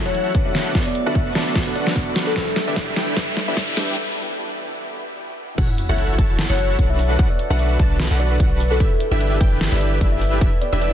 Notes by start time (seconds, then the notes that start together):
Already playing: F#3 A3 C#4 D4 E4 A4 D5 E5, riser
0.05 F#1 E4 F#4 A4 C#5 F#5
0.15 closed hi-hat
0.34 D4 A4 B4, kick, closed hi-hat
0.45 E5
0.54 B3 D4, snare, open hi-hat
0.73 B1 B3 D4 F#4 A4 D5, kick, snare, closed hi-hat
0.86 D5
0.95 closed hi-hat
1.06 B1 D4 F#4 A4 B4 E5 F#5
1.15 E5, kick, closed hi-hat
1.33 B1 B3 D4 F#4 A4 B4 A5, snare, closed hi-hat
1.37 D5
1.55 kick, snare, closed hi-hat
1.66 B1 D4 F#4 A4 B4 F#5
1.76 D5, closed hi-hat
1.87 snare
1.96 F#4 B4 F#5, kick, closed hi-hat
2.16 snare, open hi-hat
2.27 A4
2.34 G3 D4 E4 G4 A4 B4 E5, kick, snare, closed hi-hat
2.56 snare, closed hi-hat
2.67 G1 D4 E4 G4 B4 E5
2.76 kick, snare, closed hi-hat
2.94 G3 D4 E4 G4 B4 G5, snare, closed hi-hat
2.98 E5
3.15 G3 D4 E4 G4 B4 E5, kick, snare, closed hi-hat
3.37 snare, closed hi-hat
3.48 G1 D4 E4 G4 B4 E5
3.57 kick, snare, closed hi-hat
3.75 G3 D4 E4 G4 B4 E5 G5, snare, open hi-hat
3.97 E3 B3 F#4 G4
5.58 F#1 C#4 E4 F#4 A4 C#5 F#5, kick, closed hi-hat, crash, sub drop
5.69 E4
5.78 F#4, closed hi-hat
5.89 F#1 E4 F#4 A4 C#5 E5 F#5
5.98 C#4, closed hi-hat
6.09 E4
6.18 F#1 F#4 A5, kick, closed hi-hat
6.30 A4
6.38 C#4, snare, closed hi-hat
6.50 F#1 E4 F#4 A4 C#5 F#5
6.59 F#4, closed hi-hat
6.70 A4
6.79 B1 C#4 D4 F#4 A4 B4 F#5, kick, closed hi-hat
6.90 E4 E5
6.99 A4, open hi-hat
7.10 B4
7.19 B1 D4 F#4 B4 F#5, kick, closed hi-hat
7.30 F#4 D5
7.39 A4, closed hi-hat
7.50 B1 D4 F#4 A4 B4 E5 F#5
7.59 D4 E5, closed hi-hat
7.71 F#4
7.79 B1 D4 F#4 A4 B4 A5, kick, closed hi-hat
7.91 B4
8.00 D4, snare, closed hi-hat
8.11 B1 D4 F#4 A4 B4 F#5
8.20 A4 D5, closed hi-hat
8.31 B4
8.40 D4 F#4 A4 B4 F#5, kick, closed hi-hat
8.51 F#4
8.60 A4, open hi-hat
8.71 A4 B4
8.80 G1 D4 E4 E5, kick, closed hi-hat
8.91 E4
9.00 G4, closed hi-hat
9.11 G1 D4 E4 G4 B4 E5
9.21 D4, closed hi-hat
9.32 E4
9.41 G1 D4 E4 G4 B4 G5, kick, closed hi-hat
9.52 B4
9.61 snare, closed hi-hat
9.72 G1 D4 E4 G4 B4 D5 E5
9.81 G4, closed hi-hat
9.92 B4
10.01 G1 D4 E4 G4 B4 E5, kick, closed hi-hat
10.12 E4 E5
10.21 G4, open hi-hat
10.32 B4
10.41 E1 D4 E5, kick, closed hi-hat
10.53 E4
10.61 G4 D5, closed hi-hat
10.73 E1 D4 E4 G4 B4 D5 E5
10.82 D4 D5, closed hi-hat